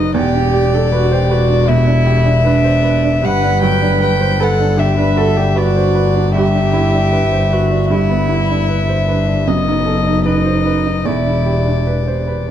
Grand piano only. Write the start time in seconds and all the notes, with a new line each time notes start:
Already playing: F#3 D#4 A4 B4 C5
0.14 E2
0.34 D4
0.54 G4
0.74 D4
0.92 B4
1.12 C5
1.30 B4
1.49 D4
1.68 B2
1.86 D4
2.06 G4
2.25 D4
2.45 B4
2.64 C5
2.83 B4
3.04 D4
3.22 G2
3.43 D4
3.62 F#3
3.82 D4
4.01 B4
4.21 C5
4.40 B4
4.60 D4
4.77 D3
4.98 D4
5.17 F#4
5.37 D4
5.56 B4
5.76 C5
5.95 B4
6.15 D4
6.35 G2
6.54 D4
6.73 E4
6.93 D4
7.13 B4
7.32 C5
7.51 B4
7.71 D4
7.90 G2
8.09 B3
8.29 E4
8.50 D4
8.69 B4
8.89 C5
9.08 B4
9.27 D4
9.47 F#2
9.67 D#4
9.86 A4
10.07 D#4
10.26 B4
10.46 C5
10.65 B4
10.87 D#4
11.05 E2
11.26 D4
11.46 G4
11.66 D4
11.87 B4
12.08 C5
12.27 B4